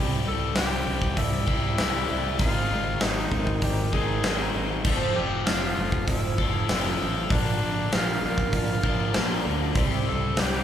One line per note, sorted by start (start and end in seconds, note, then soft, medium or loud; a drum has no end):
0.00 0.18 C2 loud
0.00 1.16 C3 medium
0.00 1.48 C3 medium
0.00 1.16 E3 medium
0.00 0.68 G3 medium
0.00 1.16 G3 loud
0.00 0.68 C4 medium
0.00 1.18 C4 medium
0.00 0.69 E4 medium
0.00 1.17 E4 loud
0.00 0.69 G4 loud
0.00 1.45 G4 loud
0.25 0.50 C2 loud
0.25 1.78 G3 medium
0.25 0.55 A4 loud
0.25 cowbell medium
0.55 0.80 C2 medium
0.55 1.78 C4 medium
0.55 1.19 G4 loud
0.55 snare loud
0.55 open hi-hat medium
0.55 cowbell medium
0.86 1.11 C2 loud
0.86 1.72 G3 medium
0.86 1.72 C4 medium
0.86 1.73 E4 medium
0.86 1.47 G4 medium
0.86 1.73 G4 medium
1.02 kick loud
1.16 1.41 C2 loud
1.16 1.48 C3 loud
1.16 1.48 E3 medium
1.16 1.48 G3 medium
1.16 1.47 C4 medium
1.16 2.08 E4 medium
1.16 2.39 E4 loud
1.16 1.46 E4 medium
1.16 kick loud
1.16 open hi-hat medium
1.16 cowbell medium
1.47 1.72 C2 loud
1.47 1.76 C3 medium
1.47 1.77 E3 medium
1.47 1.78 G3 soft
1.47 1.78 C4 soft
1.47 1.78 E4 medium
1.47 1.76 G4 medium
1.47 2.40 G4 medium
1.47 kick medium
1.47 cowbell medium
1.77 2.03 C2 medium
1.77 2.37 C3 medium
1.77 2.38 E3 medium
1.77 2.10 G3 medium
1.77 3.01 C4 medium
1.77 2.41 C4 medium
1.77 2.39 G4 medium
1.77 snare loud
1.77 open hi-hat medium
1.77 cowbell medium
1.94 2.31 G3 loud
1.94 2.31 C4 medium
1.94 2.31 E4 medium
1.94 2.31 G4 loud
2.09 2.34 C2 loud
2.09 2.40 G3 soft
2.09 2.40 C4 medium
2.09 2.40 E4 medium
2.38 2.64 G#1 medium
2.38 3.90 G#2 medium
2.38 3.91 D#3 loud
2.38 2.71 G#3 medium
2.38 2.70 G#3 medium
2.38 3.14 A#3 medium
2.38 3.14 C4 medium
2.38 2.71 C4 medium
2.38 2.70 D#4 medium
2.38 3.14 D#4 medium
2.38 3.03 F4 loud
2.38 3.14 G#4 medium
2.38 3.91 G#4 loud
2.38 kick loud
2.38 open hi-hat medium
2.38 cowbell loud
2.42 2.69 A#4 medium
2.70 2.95 G#1 loud
2.70 4.24 G#3 medium
2.70 3.63 C4 soft
2.70 3.63 D#4 soft
2.70 3.63 A#4 medium
2.70 cowbell medium
3.01 3.25 G#1 medium
3.01 4.23 C4 medium
3.01 3.62 D#4 loud
3.01 snare loud
3.01 open hi-hat medium
3.01 cowbell medium
3.31 3.56 G#1 medium
3.31 4.18 G#3 medium
3.31 4.18 A#3 medium
3.31 4.18 C4 medium
3.31 4.18 D#4 medium
3.31 3.93 A#4 medium
3.31 kick medium
3.47 kick medium
3.62 3.87 G#1 loud
3.62 3.94 G#3 medium
3.62 3.94 C4 medium
3.62 4.53 D#4 medium
3.62 3.94 D#4 medium
3.62 3.94 G4 medium
3.62 3.93 A#4 medium
3.62 kick loud
3.62 open hi-hat medium
3.62 cowbell loud
3.92 4.17 G#1 medium
3.92 4.23 D#3 medium
3.92 4.23 G#3 medium
3.92 4.25 D#4 soft
3.92 4.22 G#4 medium
3.92 4.55 G#4 loud
3.92 4.24 A#4 medium
3.92 4.86 A#4 medium
3.92 kick medium
3.92 cowbell medium
3.96 4.22 G#2 medium
3.96 4.24 C4 soft
4.23 4.48 G#1 loud
4.23 4.83 G#2 medium
4.23 4.84 D#3 medium
4.23 4.55 G#3 medium
4.23 4.85 C4 medium
4.23 4.55 C4 medium
4.23 4.55 D#4 medium
4.23 4.54 A#4 medium
4.23 snare loud
4.23 open hi-hat medium
4.23 cowbell medium
4.27 4.85 G#4 medium
4.39 4.76 A#3 medium
4.39 4.76 C4 medium
4.39 4.76 D#4 medium
4.39 4.76 G#4 medium
4.54 4.79 G#1 medium
4.54 4.85 C4 soft
4.54 4.85 D#4 medium
4.54 4.86 D#4 soft
4.54 4.86 A#4 medium
4.85 5.09 F1 loud
4.85 5.16 F2 medium
4.85 5.16 C3 medium
4.85 5.15 F3 medium
4.85 5.16 F3 medium
4.85 5.16 A3 medium
4.85 5.59 A3 medium
4.85 5.17 C4 loud
4.85 5.60 C4 medium
4.85 5.16 F4 loud
4.85 5.60 F4 medium
4.85 5.60 A4 medium
4.85 6.37 A4 loud
4.85 kick loud
4.85 crash loud
4.85 cowbell loud
5.15 5.40 F1 medium
5.15 6.70 F3 medium
5.15 6.08 F3 soft
5.15 6.08 A3 soft
5.15 6.08 C4 medium
5.15 7.34 F4 medium
5.15 5.47 G4 loud
5.15 cowbell medium
5.45 5.71 F1 medium
5.45 6.68 C4 medium
5.45 6.07 F4 loud
5.45 snare loud
5.45 open hi-hat medium
5.45 cowbell medium
5.77 6.02 F1 loud
5.77 6.64 F3 medium
5.77 6.64 A3 medium
5.77 6.63 C4 medium
5.77 6.37 A4 medium
5.77 6.64 C5 medium
5.92 kick medium
6.07 6.32 F1 loud
6.07 6.39 F2 medium
6.07 6.39 C3 medium
6.07 6.39 F3 medium
6.07 6.39 A3 medium
6.07 6.38 C4 medium
6.07 7.33 E4 loud
6.07 7.00 F4 medium
6.07 kick loud
6.07 open hi-hat medium
6.07 cowbell loud
6.38 6.63 F1 medium
6.38 6.68 F3 soft
6.38 6.69 A3 medium
6.38 6.70 C4 medium
6.38 6.68 F4 medium
6.38 7.30 A4 medium
6.38 6.67 A4 loud
6.38 kick medium
6.38 cowbell medium
6.69 6.94 F1 loud
6.69 7.00 F3 medium
6.69 7.00 A3 medium
6.69 7.31 C4 medium
6.69 7.00 C4 medium
6.69 7.31 F4 medium
6.69 snare loud
6.69 open hi-hat medium
6.69 cowbell medium
6.73 7.31 A4 medium
6.85 7.22 F3 medium
6.85 7.22 A3 medium
6.85 7.22 C4 medium
6.85 7.22 A4 loud
7.01 7.25 A1 loud
7.01 7.31 F3 soft
7.01 7.32 A3 medium
7.01 7.31 C4 medium
7.01 7.31 F4 medium
7.30 7.55 A#1 medium
7.30 8.52 A#2 medium
7.30 8.85 A#2 medium
7.30 8.53 D3 medium
7.30 8.83 F3 loud
7.30 8.05 A#3 medium
7.30 8.53 A#3 medium
7.30 8.05 D4 medium
7.30 7.93 D4 loud
7.30 8.53 D4 medium
7.30 8.05 F4 medium
7.30 8.54 F4 medium
7.30 8.05 A#4 medium
7.30 8.82 A#4 loud
7.30 kick loud
7.30 open hi-hat medium
7.30 cowbell loud
7.62 7.86 A#1 medium
7.62 9.15 F3 medium
7.62 cowbell medium
7.92 8.17 A#1 medium
7.92 9.14 A#3 medium
7.92 8.22 F4 loud
7.92 snare loud
7.92 open hi-hat medium
7.92 cowbell medium
8.23 8.47 A#1 loud
8.23 9.09 A#3 medium
8.23 9.09 D4 medium
8.23 9.09 F4 medium
8.23 8.53 F4 medium
8.23 8.83 A#4 medium
8.23 9.09 A#4 medium
8.38 kick medium
8.53 8.77 A#1 loud
8.53 8.84 A#2 medium
8.53 8.84 D3 loud
8.53 8.85 A#3 loud
8.53 9.45 D4 medium
8.53 8.84 D4 medium
8.53 8.83 F4 loud
8.53 9.43 F4 loud
8.53 kick loud
8.53 open hi-hat medium
8.53 cowbell loud
8.83 9.08 A#1 medium
8.83 9.13 D3 medium
8.83 9.14 F3 medium
8.83 9.14 A#3 soft
8.83 9.15 D4 medium
8.83 9.15 F4 medium
8.83 9.13 A#4 medium
8.83 9.76 A#4 medium
8.83 kick medium
8.83 cowbell medium
8.88 9.13 A#2 medium
9.14 9.40 A#1 loud
9.14 9.74 A#2 medium
9.14 9.45 D3 medium
9.14 9.75 F3 medium
9.14 9.46 A#3 medium
9.14 9.77 A#3 medium
9.14 9.45 D4 medium
9.14 9.44 F4 medium
9.14 snare loud
9.14 open hi-hat medium
9.14 cowbell medium
9.18 9.76 A#4 medium
9.29 9.66 A#3 medium
9.29 9.67 D4 medium
9.29 9.67 F4 medium
9.29 9.67 A#4 loud
9.45 9.70 D2 medium
9.45 9.76 A#3 soft
9.45 9.76 D4 medium
9.45 9.77 D4 medium
9.45 9.76 F4 medium
9.75 10.00 C2 loud
9.75 10.07 C3 loud
9.75 10.64 C3 medium
9.75 10.07 E3 loud
9.75 10.07 G3 loud
9.75 10.49 C4 medium
9.75 10.06 C4 loud
9.75 10.50 E4 medium
9.75 10.04 E4 loud
9.75 10.50 G4 medium
9.75 10.50 C5 loud
9.75 kick loud
9.75 open hi-hat medium
9.75 cowbell loud
9.80 10.64 G4 loud
10.06 10.31 C2 loud
10.06 10.64 G3 soft
10.06 10.64 G3 medium
10.06 10.64 E4 soft
10.06 10.41 A4 loud
10.06 cowbell medium
10.37 10.62 C2 medium
10.37 10.64 C4 medium
10.37 10.64 G4 loud
10.37 snare loud
10.37 open hi-hat medium
10.37 cowbell medium